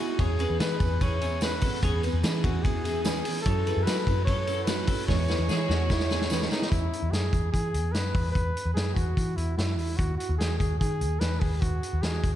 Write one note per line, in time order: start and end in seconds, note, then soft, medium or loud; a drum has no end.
0.00 0.18 B3 soft
0.00 0.15 C#4 medium
0.00 0.19 E4 medium
0.00 0.22 F#4 medium
0.00 0.19 G#4 medium
0.19 0.45 E2 loud
0.19 0.39 E3 medium
0.19 0.40 B3 medium
0.19 3.41 C#4 medium
0.19 0.39 C#4 medium
0.19 3.42 E4 medium
0.19 3.41 G#4 medium
0.19 0.60 G#4 medium
0.19 0.37 G#4 medium
0.19 0.40 C#5 medium
0.19 kick loud
0.19 ride medium
0.19 tambourine soft
0.39 0.59 B3 soft
0.39 0.60 C#4 medium
0.39 0.60 G#4 medium
0.39 0.59 B4 medium
0.39 ride medium
0.39 tambourine medium
0.50 0.59 E2 medium
0.60 0.80 E3 medium
0.60 0.78 E3 medium
0.60 0.81 B3 medium
0.60 0.80 C#4 medium
0.60 0.78 G#4 medium
0.60 1.04 B4 medium
0.60 0.99 B4 medium
0.60 snare loud
0.60 ride medium
0.60 tambourine medium
0.80 1.58 E2 medium
0.80 1.00 B3 soft
0.80 1.01 C#4 soft
0.80 1.01 G#4 medium
0.80 kick loud
0.80 ride medium
0.80 tambourine soft
1.00 1.21 E3 medium
1.00 1.22 B3 medium
1.00 1.21 C#4 medium
1.00 1.21 E4 medium
1.00 1.19 G#4 medium
1.00 1.43 C#5 loud
1.00 kick loud
1.00 ride medium
1.00 tambourine soft
1.20 1.41 B3 soft
1.20 1.41 C#4 soft
1.20 1.42 E4 medium
1.20 1.41 G#4 medium
1.20 ride medium
1.20 tambourine medium
1.41 1.62 E3 medium
1.41 1.62 B3 medium
1.41 1.63 C#4 medium
1.41 1.61 G#4 medium
1.41 1.62 B4 medium
1.41 1.81 B4 medium
1.41 snare loud
1.41 ride medium
1.41 tambourine loud
1.61 1.82 B3 soft
1.61 1.83 C#4 medium
1.61 1.83 F#4 medium
1.61 1.83 G#4 medium
1.61 1.83 A4 medium
1.61 kick loud
1.61 open hi-hat medium
1.61 ride medium
1.61 tambourine medium
1.83 2.09 E2 medium
1.83 2.03 E3 medium
1.83 2.03 B3 medium
1.83 2.03 C#4 medium
1.83 2.02 G#4 medium
1.83 2.03 C#5 loud
1.83 kick loud
1.83 hi-hat pedal medium
1.83 ride medium
1.83 tambourine soft
2.03 2.23 B3 soft
2.03 2.24 C#4 medium
2.03 2.23 G#4 medium
2.03 2.24 B4 medium
2.03 ride medium
2.03 tambourine medium
2.13 2.22 E2 medium
2.23 2.45 E3 medium
2.23 2.44 E3 medium
2.23 2.44 B3 medium
2.23 2.44 C#4 medium
2.23 2.81 E4 medium
2.23 2.42 G#4 loud
2.23 snare loud
2.23 ride medium
2.23 tambourine medium
2.43 3.21 E2 medium
2.43 2.64 B3 soft
2.43 2.65 C#4 soft
2.43 2.65 F#4 medium
2.43 2.64 G#4 medium
2.43 kick medium
2.43 ride medium
2.43 tambourine soft
2.64 2.84 E3 medium
2.64 2.85 B3 medium
2.64 2.84 C#4 medium
2.64 3.04 G#4 loud
2.64 2.82 G#4 medium
2.64 kick loud
2.64 ride medium
2.64 tambourine soft
2.84 3.04 B3 soft
2.84 3.04 C#4 medium
2.84 3.05 E4 medium
2.84 3.04 G#4 medium
2.84 ride medium
2.84 tambourine medium
3.04 3.25 E3 medium
3.04 3.25 B3 medium
3.04 3.24 C#4 medium
3.04 3.41 G#4 medium
3.04 3.23 G#4 medium
3.04 3.25 B4 medium
3.04 snare loud
3.04 ride medium
3.04 tambourine loud
3.24 3.45 B3 soft
3.24 3.44 C#4 soft
3.24 3.46 E4 medium
3.24 3.45 G#4 medium
3.24 open hi-hat medium
3.24 ride medium
3.24 tambourine medium
3.42 3.71 F#2 medium
3.42 3.66 F#3 medium
3.42 3.66 C#4 medium
3.42 3.85 A4 loud
3.46 4.65 E4 medium
3.46 3.66 E4 medium
3.46 4.65 F#4 medium
3.46 3.64 A4 medium
3.46 4.66 A4 medium
3.46 3.66 C#5 medium
3.46 kick loud
3.46 hi-hat pedal medium
3.46 ride medium
3.65 3.86 C#4 soft
3.65 3.86 E4 medium
3.65 3.87 G#4 medium
3.65 3.86 A4 medium
3.65 3.86 B4 medium
3.65 ride medium
3.65 tambourine medium
3.77 3.85 F#2 medium
3.84 4.06 F#3 medium
3.84 4.03 F#3 medium
3.84 4.07 C#4 medium
3.84 4.07 E4 medium
3.84 4.24 B4 loud
3.84 4.25 B4 medium
3.84 snare loud
3.84 ride medium
3.84 tambourine medium
3.88 4.25 F#4 medium
3.88 4.05 A4 medium
4.07 4.84 F#2 medium
4.07 4.27 C#4 soft
4.07 4.27 E4 medium
4.07 4.27 A4 medium
4.07 kick medium
4.07 ride medium
4.07 tambourine soft
4.25 4.47 F#3 medium
4.25 4.48 C#4 medium
4.25 4.46 E4 medium
4.25 4.47 F#4 medium
4.25 4.64 C#5 loud
4.25 kick medium
4.25 ride medium
4.25 tambourine soft
4.29 4.46 A4 medium
4.47 4.66 C#4 soft
4.47 4.67 E4 soft
4.47 4.68 F#4 medium
4.47 4.67 A4 medium
4.47 ride medium
4.47 tambourine medium
4.64 4.88 F#3 medium
4.64 4.88 C#4 medium
4.64 5.07 E4 soft
4.64 5.08 F#4 soft
4.64 5.08 A4 medium
4.64 5.08 B4 medium
4.64 4.88 B4 medium
4.64 snare loud
4.64 ride medium
4.64 tambourine loud
4.68 4.88 E4 medium
4.68 4.88 F#4 medium
4.68 4.87 A4 medium
4.87 5.08 C#4 soft
4.87 5.08 E4 soft
4.87 5.09 F#4 medium
4.87 5.08 A4 medium
4.87 kick loud
4.87 open hi-hat medium
4.87 ride medium
4.87 tambourine medium
5.06 5.34 E2 loud
5.06 5.28 E3 medium
5.06 5.29 G#3 medium
5.06 5.29 B3 medium
5.06 6.68 C#4 medium
5.06 6.68 E4 medium
5.06 5.29 E4 medium
5.06 6.68 G#4 medium
5.06 5.28 G#4 medium
5.06 6.50 C#5 loud
5.06 5.27 C#5 medium
5.06 kick loud
5.06 snare medium
5.28 5.48 B3 soft
5.28 5.48 E4 soft
5.28 5.49 G#4 soft
5.28 5.49 B4 medium
5.28 5.49 C#5 medium
5.28 snare medium
5.28 tambourine medium
5.39 5.47 E2 loud
5.48 5.69 E3 medium
5.48 5.66 E3 medium
5.48 5.69 G#3 medium
5.48 5.69 B3 medium
5.48 5.69 E4 medium
5.48 5.67 G#4 loud
5.48 5.68 G#4 medium
5.48 5.67 C#5 medium
5.48 snare medium
5.48 tambourine medium
5.68 6.47 E2 medium
5.68 5.88 B3 soft
5.68 5.89 E4 soft
5.68 5.90 F#4 medium
5.68 5.89 G#4 medium
5.68 5.89 C#5 medium
5.68 snare medium
5.89 6.10 B3 medium
5.89 6.10 E4 medium
5.89 6.09 G#4 medium
5.89 6.08 C#5 medium
5.89 kick medium
5.89 snare medium
5.89 tambourine soft
6.00 snare medium
6.09 6.30 B3 medium
6.09 6.30 E4 medium
6.09 6.30 G#4 medium
6.09 6.31 G#4 medium
6.09 6.30 C#5 medium
6.09 snare medium
6.09 tambourine medium
6.21 snare medium
6.30 6.51 E3 medium
6.30 6.51 G#3 medium
6.30 6.51 B3 medium
6.30 6.71 C#4 medium
6.30 6.52 E4 medium
6.30 6.51 G#4 loud
6.30 6.51 B4 medium
6.30 6.50 C#5 loud
6.30 snare loud
6.30 tambourine loud
6.42 snare medium
6.51 6.73 B3 medium
6.51 6.72 D#4 medium
6.51 6.73 E4 soft
6.51 6.72 G#4 medium
6.51 6.71 C#5 medium
6.51 snare loud
6.51 tambourine medium
6.62 snare medium
6.71 6.89 E2 medium
6.71 7.13 E4 medium
6.71 kick loud
6.71 closed hi-hat medium
6.93 closed hi-hat medium
7.03 7.11 E2 medium
7.12 7.30 F#2 medium
7.12 7.52 G#4 medium
7.12 snare medium
7.12 closed hi-hat medium
7.33 7.50 E2 medium
7.33 kick medium
7.33 closed hi-hat medium
7.52 7.75 E3 medium
7.52 7.94 G#4 loud
7.52 kick medium
7.52 closed hi-hat medium
7.74 7.94 E2 medium
7.74 closed hi-hat medium
7.92 8.12 F#2 medium
7.92 8.32 B4 medium
7.92 snare loud
7.92 closed hi-hat medium
8.14 8.32 E2 medium
8.14 kick loud
8.14 open hi-hat medium
8.32 8.53 E2 medium
8.32 8.72 B4 loud
8.32 kick medium
8.32 closed hi-hat medium
8.57 closed hi-hat medium
8.65 8.74 E2 medium
8.74 8.93 F#2 medium
8.74 8.96 G#4 medium
8.74 snare loud
8.74 closed hi-hat medium
8.94 9.14 E2 medium
8.94 9.38 F#4 medium
8.94 kick medium
8.94 closed hi-hat medium
9.17 9.34 E3 loud
9.17 kick medium
9.17 closed hi-hat medium
9.37 9.55 E2 medium
9.37 9.57 E4 medium
9.37 closed hi-hat medium
9.57 9.78 F#2 medium
9.57 9.76 E4 medium
9.57 snare loud
9.57 closed hi-hat medium
9.77 9.95 E2 medium
9.77 9.98 E4 medium
9.77 open hi-hat medium
9.97 10.16 D#2 medium
9.97 10.17 F#4 medium
9.97 kick loud
9.97 closed hi-hat medium
10.18 10.37 F#4 medium
10.18 closed hi-hat medium
10.29 10.38 D#2 medium
10.38 10.57 E2 medium
10.38 10.58 G#4 medium
10.38 snare loud
10.38 closed hi-hat medium
10.58 10.77 D#2 medium
10.58 10.78 G#4 medium
10.58 kick medium
10.58 closed hi-hat medium
10.79 11.02 D#3 medium
10.79 11.21 G#4 loud
10.79 kick medium
10.79 closed hi-hat medium
11.01 11.18 D#2 medium
11.01 closed hi-hat medium
11.20 11.38 E2 medium
11.20 11.42 B4 medium
11.20 snare loud
11.20 closed hi-hat medium
11.40 11.59 D#2 medium
11.40 11.62 G#4 medium
11.40 kick loud
11.40 open hi-hat medium
11.61 11.80 D#2 medium
11.61 12.04 F#4 medium
11.61 kick loud
11.61 closed hi-hat medium
11.83 closed hi-hat medium
11.93 12.02 D#2 loud
12.02 12.20 E2 medium
12.02 12.31 G#4 medium
12.02 snare medium
12.02 closed hi-hat medium
12.23 12.36 D#2 medium
12.23 kick medium
12.23 closed hi-hat medium